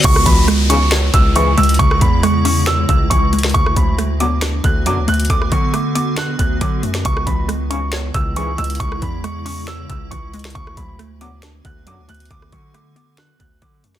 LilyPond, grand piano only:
\new Staff \with { instrumentName = "Grand piano" } { \time 4/4 \key cis \phrygian \tempo 4 = 137 cis'''8 b''8 r8 cis'''8 r8 e'''8 cis'''8 e'''8 | cis'''8 b''8 cis'''8 cis'''8 e'''8 e'''8 cis'''4 | cis'''8 b''8 r8 d'''8 r8 fis'''8 d'''8 fis'''8 | d'''8 cis'''8 d'''8 d'''8 fis'''8 fis'''8 d'''4 |
cis'''8 b''8 r8 cis'''8 r8 e'''8 cis'''8 e'''8 | cis'''8 b''8 cis'''8 cis'''8 e'''8 e'''8 cis'''4 | cis'''8 b''8 r8 d'''8 r8 fis'''8 d'''8 fis'''8 | d'''8 cis'''8 d'''8 d'''8 fis'''8 fis'''8 d'''4 | }